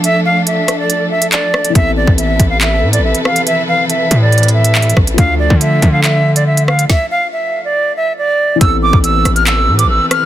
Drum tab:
HH |x-----------------------x-----------x-----------x-----------------x-----x-----------------x-----|x-----------------------x-----------x-----------x-----------------x-----------x-----------x-----|x-----------------------x-----------x-----------x--x--x--x--------x-----x---x---x---------x-----|x-----------------------x-----------x-----------x-----------------x-----------x-----------x-----|
CP |------------------------------------------------------------------------x-----------------------|------------------------------------------------x-----------------------------------------------|------------------------------------------------------------------------x-----------------------|------------------------------------------------x-----------------------------------------------|
SD |------------------------------------r-----------------------------------------------r-----------|------------------------------------------------------------------------------------r-----------|------------------------------------------------------------------------------------r-----------|------------------------------------------------------------------------------------r-----------|
BD |------------------------------------------------------------------------------------------------|o-----------------o-----------------o-----------------------------------------------------------|------------------------------------------------------------------------------------o-----------|o-----------------o-----------------o-----------------------------------------------------------|

HH |------------------------------------------------------------------------------------------------|x-----------------------x-----------x-----x-----x-----------------x-----------------x-----------|
CP |------------------------------------------------------------------------------------------------|------------------------------------------------x-----------------------------------------------|
SD |o-----------------------------------------------------------------------------------------------|------------------------------------r-----------------------------------------------r-----------|
BD |o-----------------------------------------------------------------------------------------------|o-----------------o-----------------------------------------------------------------------------|